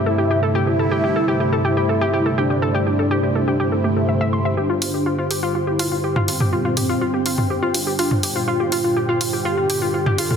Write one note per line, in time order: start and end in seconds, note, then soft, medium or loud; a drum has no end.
0.00 0.64 G2 medium
0.00 4.56 G2 medium
0.00 0.64 C3 medium
0.00 4.56 D3 medium
0.00 0.64 A3 medium
0.00 0.58 E4 loud
0.00 0.64 E4 medium
0.00 10.37 G4 medium
0.00 10.37 C5 medium
0.00 4.57 E5 medium
0.06 0.14 A4 medium
0.18 0.29 G4 medium
0.31 0.39 G4 medium
0.43 0.51 A4 medium
0.55 0.66 G4 loud
0.67 4.55 G2 medium
0.67 4.55 C3 medium
0.67 4.55 A3 medium
0.67 1.55 E4 loud
0.67 4.55 E4 medium
0.67 0.75 G4 medium
0.79 0.87 A4 medium
0.91 1.03 G4 loud
1.04 1.12 G4 medium
1.16 1.24 A4 medium
1.28 1.39 G4 loud
1.40 1.48 G4 medium
1.53 1.61 A4 medium
1.65 2.28 E4 loud
1.65 1.76 G4 loud
1.77 1.85 G4 medium
1.89 1.97 A4 medium
2.01 2.12 G4 loud
2.13 2.22 G4 medium
2.26 2.34 A4 medium
2.38 3.75 D4 loud
2.38 2.49 G4 loud
2.50 2.58 G4 medium
2.62 2.70 A4 medium
2.75 2.85 G4 loud
2.87 2.95 G4 medium
2.99 3.07 A4 medium
3.11 3.22 G4 loud
3.23 3.31 G4 medium
3.35 3.44 A4 medium
3.48 3.59 G4 loud
3.60 3.68 G4 medium
3.72 3.80 A4 medium
3.84 4.48 A3 loud
3.84 3.92 G4 medium
3.97 4.08 A4 medium
4.09 4.17 E5 medium
4.21 4.29 E5 loud
4.33 4.41 C6 medium
4.45 4.53 E5 loud
4.57 4.88 G1 loud
4.57 10.37 G2 medium
4.57 10.37 D3 medium
4.57 5.45 D4 loud
4.57 4.66 G4 medium
4.70 4.81 F4 loud
4.82 4.90 F4 medium
4.82 open hi-hat loud
4.94 5.25 G1 medium
4.94 5.02 G4 medium
5.06 5.17 F4 loud
5.18 5.27 F4 medium
5.31 5.61 G1 loud
5.31 5.39 G4 medium
5.31 10.37 G5 medium
5.31 open hi-hat loud
5.43 5.54 F4 loud
5.55 6.30 E4 loud
5.55 5.63 F4 medium
5.67 5.98 G1 loud
5.67 5.75 G4 medium
5.79 5.90 A#2 medium
5.79 5.90 G3 medium
5.79 5.90 F4 loud
5.79 open hi-hat loud
5.92 6.00 F4 medium
6.04 6.12 G4 medium
6.16 6.47 G1 medium
6.16 6.27 F4 loud
6.16 mid tom medium
6.28 6.86 A#2 medium
6.28 6.86 G3 medium
6.28 7.76 C4 loud
6.28 6.36 F4 medium
6.28 6.86 F4 medium
6.28 open hi-hat loud
6.40 6.49 G4 medium
6.40 mid tom medium
6.53 6.83 G1 loud
6.53 6.64 F4 loud
6.65 6.73 F4 medium
6.77 6.85 G4 medium
6.77 mid tom medium
6.77 open hi-hat loud
6.89 7.20 G1 medium
6.89 7.00 A#2 loud
6.89 7.00 G3 medium
6.89 7.00 F4 loud
7.01 7.10 F4 medium
7.14 7.22 G4 medium
7.26 7.56 G1 loud
7.26 7.37 F4 loud
7.26 open hi-hat loud
7.38 7.46 F4 medium
7.38 mid tom medium
7.50 7.58 G4 medium
7.62 7.93 G1 loud
7.62 7.73 F4 loud
7.74 8.38 D4 loud
7.74 7.83 F4 medium
7.74 open hi-hat loud
7.87 7.95 G4 medium
7.99 8.10 F4 loud
7.99 open hi-hat medium
8.11 8.42 G1 medium
8.11 8.19 F4 medium
8.11 mid tom medium
8.23 9.67 A#2 medium
8.23 9.67 G3 medium
8.23 9.67 F4 medium
8.23 8.31 G4 medium
8.23 open hi-hat loud
8.36 8.47 F4 loud
8.48 8.78 G1 medium
8.48 9.36 F4 loud
8.48 8.56 F4 medium
8.60 8.68 G4 medium
8.72 8.83 F4 loud
8.72 open hi-hat loud
8.84 9.15 G1 medium
8.84 8.92 F4 medium
8.96 9.05 G4 medium
9.09 9.20 F4 loud
9.21 9.52 G1 loud
9.21 9.29 F4 medium
9.21 open hi-hat loud
9.33 9.41 G4 medium
9.45 9.56 F4 loud
9.45 10.20 G4 loud
9.58 9.88 G1 loud
9.58 9.66 F4 medium
9.70 9.80 A#2 medium
9.70 9.80 G3 medium
9.70 9.80 F4 loud
9.70 9.78 G4 medium
9.70 open hi-hat loud
9.82 9.93 F4 loud
9.94 10.02 F4 medium
10.06 10.37 G1 medium
10.06 10.14 G4 medium
10.06 mid tom medium
10.18 10.37 A#2 medium
10.18 10.37 G3 medium
10.18 10.37 F4 medium
10.18 10.29 F4 loud
10.18 10.37 A4 loud
10.18 open hi-hat loud
10.31 10.37 F4 medium
10.31 mid tom medium